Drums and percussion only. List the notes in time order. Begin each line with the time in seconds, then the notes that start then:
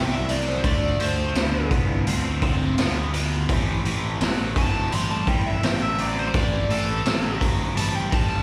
0.29 open hi-hat
0.64 kick, open hi-hat
1.00 open hi-hat
1.35 snare, open hi-hat
1.71 kick, open hi-hat
2.07 open hi-hat
2.42 kick, open hi-hat
2.78 snare, open hi-hat
3.14 open hi-hat
3.49 kick, open hi-hat
3.85 open hi-hat
4.21 snare, open hi-hat
4.56 kick, open hi-hat
4.92 open hi-hat
5.27 kick, open hi-hat
5.63 snare, open hi-hat
5.98 open hi-hat
6.34 kick, open hi-hat
6.70 open hi-hat
7.06 snare, open hi-hat
7.41 kick, open hi-hat
7.77 open hi-hat
8.12 kick, open hi-hat